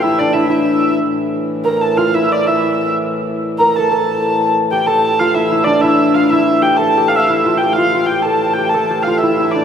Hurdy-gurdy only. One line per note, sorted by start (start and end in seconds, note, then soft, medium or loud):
0.02 0.19 E5 medium
0.19 0.34 D5 medium
0.33 0.50 E5 medium
0.50 0.96 E5 medium
1.65 1.81 A#5 medium
1.81 1.97 A5 medium
1.97 2.14 F5 medium
2.14 2.32 E5 medium
2.32 2.47 D5 medium
2.47 2.91 E5 medium
3.59 3.76 A#5 medium
3.76 3.92 A5 medium
3.92 4.51 A5 medium
4.72 4.86 G5 medium
4.86 5.19 A5 loud
5.19 5.35 F5 medium
5.34 5.65 E5 medium
5.64 5.81 D5 medium
5.81 6.14 E5 medium
6.14 6.31 F5 medium
6.30 6.63 E5 medium
6.62 6.77 G5 medium
6.77 7.08 A5 medium
7.08 7.16 F5 medium
7.16 7.27 E5 medium
7.16 7.27 F5 medium
7.27 7.60 E5 medium
7.58 7.75 G5 medium
7.73 8.06 F5 medium
8.06 8.24 G5 medium
8.22 8.54 A5 medium
8.53 8.71 G5 medium
8.69 9.03 A5 medium
9.02 9.20 F5 medium
9.18 9.51 E5 medium
9.51 9.65 D5 medium